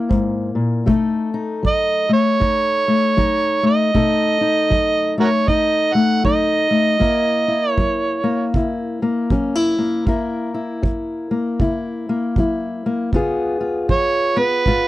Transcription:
Already playing: A#3 E4 A#4
0.09 G#2, kick
0.55 A#2
0.86 B2 A3 D#4 A4, kick
1.34 D#4
1.63 F#3, kick
1.67 D#5
2.09 A3 C#5
2.40 F#2 D#4, kick
2.88 A3
3.17 F#3 D#4, kick
3.63 A3 D#5
3.94 B2 A3 D#4 A4, kick
4.41 D#4
4.70 F#3, kick
5.18 A3 F#4 A#4 C#5
5.47 F#2 D#4 D#5, kick
5.93 A3 F#5
6.24 F#3 D#4 D#5, kick
6.71 A3
6.99 F#2 A#3 E4 A#4, kick
7.48 E4
7.70 C#5
7.77 F#3, kick
8.24 A#3
8.54 C#3 E4, kick
9.02 A#3
9.30 F#3 C#4, kick
9.55 E4
9.78 A#3
10.06 F#2 A#3 E4 A#4, kick
10.54 E4
10.83 F#3, kick
11.31 A#3
11.60 C#3 E4, kick
12.09 A#3
12.36 F#3 E4, kick
12.86 A#3
13.13 C#3 B3 F4 G#4, kick
13.61 F4
13.89 F3 C#5, kick
14.37 B3 B4
14.66 G#2 F4, kick

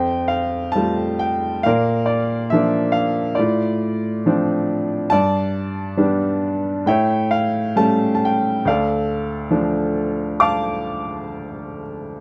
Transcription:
Already playing: F2 C5 G5
0.28 F5
0.72 G3 A5
0.76 A3 F4
1.19 G5
1.63 A#2 A#4 D5 F5
2.06 D5
2.50 F3 A#3 D4 E5
2.92 F5
3.35 F4 D5
3.39 A2
4.26 F3 C4 D4
5.10 G2 D5 A5
5.97 G3 B3 D4
6.86 A2 C#5 E5 G5
7.31 F5
7.76 G3 A3 C#4 A5
8.15 A5
8.25 G5
8.65 D2 A4 D5 F5
9.51 F3 A3 D4
10.40 F5 A5 D6

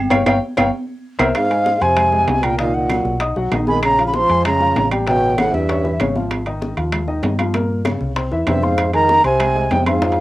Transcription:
0.10 G1 C#5 F5 G5, cowbell, high conga, high timbale, claves
0.26 G1 C#5 F5 G5, cowbell, high conga, high timbale, claves
0.57 G1 C#5 F5 G5, cowbell, high conga, high timbale, claves
1.19 C2 A#4 C5 E5, cowbell, high conga, high timbale, claves
1.35 G#2 F5, high bongo, high conga, high timbale, claves
1.50 G#3 G#4 G#5, high conga, high timbale
1.66 high bongo, high conga, low timbale
1.81 F2 C3 C4 C5 G#5 C6, high bongo, high conga, high timbale
1.97 high bongo, high conga, low conga, high timbale, claves
2.12 G#3 G#4 G#5, high bongo, high conga, low conga
2.28 C2, high bongo, low bongo, high conga, high timbale, low timbale
2.43 A#2 A#3 A#4 G5 A#5, high bongo, high conga, high timbale, claves
2.58 A#2 D#3 D#4 D#5 F5, high bongo, high conga, high timbale
2.74 A#2 F#5, high conga
2.90 F#3 F#4 F#5, high bongo, high conga, high timbale, low timbale, claves
3.05 B1, high bongo, high conga
3.20 D#4 D#5 D#6, high bongo, high conga, high timbale
3.36 B1 F#3 F#4 F#5, high bongo, high conga
3.51 A#1 D#3 D#4 D#5, high bongo, low bongo, high conga, high timbale, low timbale, claves
3.67 D#3 G#3 G#4 G#5 B5, high bongo, high conga
3.83 C#3 A#5, high bongo, high conga, high timbale, claves
3.98 F3 F4 F5, high conga, high timbale
4.07 C#3 B5
4.13 F3 C6, high bongo, high conga, low timbale
4.29 F2 G#3 G#4 G#5, high bongo, high conga, high timbale
4.45 C#3 A#5, high bongo, high conga, low conga, high timbale, claves
4.60 F3 F4 F5, high bongo, high conga, low conga
4.76 A1, high bongo, low bongo, high conga, high timbale, low timbale
4.91 G3 G4 G5, high bongo, high conga, high timbale, claves
5.07 B2 C#3 C#4 C#5 G5, high bongo, high conga, high timbale
5.23 high conga
5.38 A2 E3 E4 E5 F#5, high bongo, high conga, high timbale, low timbale, claves
5.53 E2 G2 E5, high bongo, high conga
5.69 C#4 C#5 C#6, high bongo, high conga, high timbale
5.84 E3 E4 E5, high bongo, high conga
6.00 G#1 C#3 C#4 C#5, high bongo, low bongo, high conga, high timbale, low timbale, claves
6.15 F3 F4 F5, high bongo, high conga
6.31 high bongo, high conga, high timbale, claves
6.46 D#3 D#4 D#5, high conga, high timbale
6.62 high bongo, high conga, low timbale
6.77 D#2 F3 F4 F5, high bongo, high conga, high timbale
6.92 high bongo, high conga, low conga, high timbale, claves
7.08 D#3 D#4 D#5, high bongo, high conga
7.23 G2, high bongo, low bongo, high conga, high timbale, low timbale
7.38 F3 F4 F5, high bongo, high conga, high timbale, claves
7.54 A#2 A#3 A#4, high bongo, high conga, high timbale
7.70 high conga
7.85 C#3 C#4 C#5, high bongo, high conga, high timbale, low timbale, claves
8.01 C2, high bongo, high conga
8.16 C4 C5 C6, high bongo, high conga, high timbale
8.32 E2 E3 E4 E5, high bongo, high conga
8.47 F2 G2 C3 C4 C5 E5, high bongo, low bongo, high conga, high timbale, low timbale, claves
8.62 G#2 C4 C5 F5 C6, high bongo, high conga
8.78 high bongo, high conga, high timbale, claves
8.93 D#3 G#3 G#4 G#5 A#5, high timbale
9.09 high bongo, high conga, low timbale
9.24 C2 C3 C4 C5 G#5 C6, high bongo, high conga, high timbale
9.40 high bongo, high conga, low conga, high timbale, claves
9.55 G#3 G#4 G#5, high bongo, high conga
9.71 F2 C3 G5, high bongo, low bongo, high conga, high timbale, low timbale
9.86 G#2 C4 C5 F5 C6, high bongo, high conga, high timbale, claves
10.02 F3 F4 F5, high bongo, high conga, high timbale
10.12 high timbale
10.17 high conga

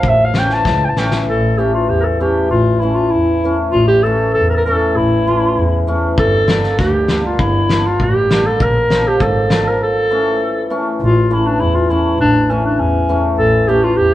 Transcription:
0.03 A1, kick
0.09 E5
0.25 F5
0.34 E3 A3 C#4, snare
0.39 G5
0.50 A5, snare
0.65 C#2, kick, snare
0.84 G5
0.89 A5
0.97 A1 E3 A3 C#4 G5, snare
1.11 snare
1.28 A1 A4
1.58 E3 A3 C#4 G4
1.74 F4
1.89 E2 G4
2.01 A4 A#4
2.20 E3 A3 C#4 G4
2.51 A1 F4
2.80 E3 A3 C#4 E4
2.95 F4
3.11 E2 E4
3.44 E3 A3 C#4
3.71 A1 F4
3.88 G4
4.03 E3 A3 C#4 A4
4.34 E2 A4
4.50 A#4
4.54 A4 A#4
4.64 E3 A3 C#4 A4
4.96 A1 E4
5.27 E3 A3 C#4
5.57 E2
5.87 E3 A3 C#4
6.18 G1 A4, kick
6.48 G3 A#3 D4, snare
6.63 snare
6.79 D2 G4, kick, snare
7.08 G3 A#3 D4, snare
7.26 F4
7.39 G1 E4, kick
7.69 G3 A#3 D4, snare
7.86 F4
7.99 A1 G4, kick
8.31 G3 A#3 D4, snare
8.46 A4
8.60 A#1 A#4, kick
8.90 F3 A#3 D4, snare
9.08 G4
9.20 G#1 A4, kick
9.50 F3 A#3 D4, snare
9.68 A#4
9.83 A4
10.10 E3 A3 C#4
10.70 E3 A3 C#4
11.00 A1 F4
11.30 E3 A3 C#4 E4
11.46 D4
11.59 E2 E4
11.75 F4
11.90 E3 A3 C#4 E4
12.19 A1 D4
12.50 E3 A3 C#4
12.65 D4
12.78 E2 C#4
13.09 E3 A3 C#4
13.37 A1 A4
13.68 E3 A3 C#4 G4
13.83 F4
13.97 E2 G4

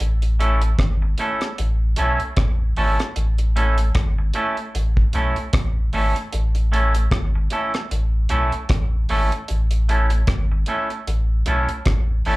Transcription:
0.00 A1, closed hi-hat
0.22 closed hi-hat
0.40 A3 C#4 E4 A4, closed hi-hat
0.62 closed hi-hat
0.79 G#1, kick, cross-stick, closed hi-hat
1.02 muted clean electric guitar stroke
1.18 A3 C#4 E4 A4, closed hi-hat
1.41 cross-stick, closed hi-hat
1.58 A1, closed hi-hat
1.96 B1 A3 C#4 E4 A4, closed hi-hat
2.20 closed hi-hat
2.37 A1, kick, cross-stick, closed hi-hat
2.77 G#1 A3 C#4 E4 A4, open hi-hat
3.00 cross-stick, closed hi-hat
3.16 A1, closed hi-hat
3.38 closed hi-hat
3.56 A3 C#4 E4 A4, closed hi-hat
3.78 closed hi-hat
3.95 G#1, kick, cross-stick, closed hi-hat
4.19 muted clean electric guitar stroke
4.34 A3 C#4 E4 A4, closed hi-hat
4.57 closed hi-hat
4.75 A1, closed hi-hat
4.97 kick
5.13 B1 A3 C#4 E4 A4, closed hi-hat
5.36 closed hi-hat
5.53 A1, kick, cross-stick, closed hi-hat
5.93 G#1 A3 C#4 E4 A4, open hi-hat
6.16 closed hi-hat
6.33 A1, closed hi-hat
6.55 closed hi-hat
6.72 A3 C#4 E4 A4, closed hi-hat
6.95 closed hi-hat
7.11 G#1, kick, cross-stick, closed hi-hat
7.35 muted clean electric guitar stroke
7.50 A3 C#4 E4 A4, closed hi-hat
7.74 cross-stick, closed hi-hat
7.91 A1, closed hi-hat
8.29 B1 A3 C#4 E4 A4, closed hi-hat
8.52 closed hi-hat
8.69 A1, kick, cross-stick, closed hi-hat
9.09 G#1 A3 C#4 E4 A4, open hi-hat
9.32 closed hi-hat
9.48 A1, closed hi-hat
9.71 closed hi-hat
9.89 A3 C#4 E4 A4, closed hi-hat
10.10 closed hi-hat
10.27 G#1, kick, cross-stick, closed hi-hat
10.52 muted clean electric guitar stroke
10.66 A3 C#4 E4 A4, closed hi-hat
10.90 closed hi-hat
11.07 A1, closed hi-hat
11.46 B1 A3 C#4 E4 A4, closed hi-hat
11.69 closed hi-hat
11.86 A1, kick, cross-stick, closed hi-hat
12.25 G#1 A3 C#4 E4 A4, open hi-hat

